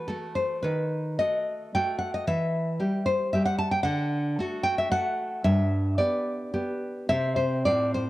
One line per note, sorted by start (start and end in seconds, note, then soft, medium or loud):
0.08 0.60 A3 soft
0.08 0.60 F#4 medium
0.08 0.34 A4 medium
0.35 0.62 C5 medium
0.63 1.18 D#3 medium
0.63 1.16 B4 medium
1.19 1.74 A3 soft
1.19 1.75 F#4 medium
1.19 1.72 D#5 medium
1.75 2.25 A3 medium
1.75 2.25 F#4 medium
1.75 1.98 G5 medium
1.99 2.14 F#5 medium
2.14 2.27 D#5 medium
2.27 2.79 E3 medium
2.27 3.03 E5 loud
2.80 3.33 G3 medium
2.80 3.34 G4 medium
3.06 3.31 C5 medium
3.33 3.82 G3 medium
3.33 3.82 G4 medium
3.33 3.45 E5 medium
3.45 3.58 F#5 medium
3.58 3.71 A5 loud
3.71 3.83 G5 medium
3.83 4.37 D3 medium
3.83 4.60 F#5 loud
4.39 4.90 A3 medium
4.39 4.90 F#4 medium
4.63 4.77 G5 loud
4.78 4.91 E5 medium
4.91 5.41 A3 medium
4.91 5.41 F#4 medium
4.91 5.43 F#5 loud
5.44 5.97 G2 medium
5.44 5.96 E5 loud
5.98 6.52 B3 medium
5.98 6.52 G4 medium
5.98 6.51 D5 medium
6.54 7.06 B3 medium
6.54 7.06 G4 medium
7.09 7.65 C3 medium
7.09 7.63 C4 medium
7.09 7.63 G4 medium
7.09 7.36 E5 loud
7.36 7.65 C5 medium
7.65 8.10 A2 medium
7.65 8.10 C4 medium
7.65 8.10 F4 medium
7.65 7.94 D5 loud
7.94 8.10 C5 medium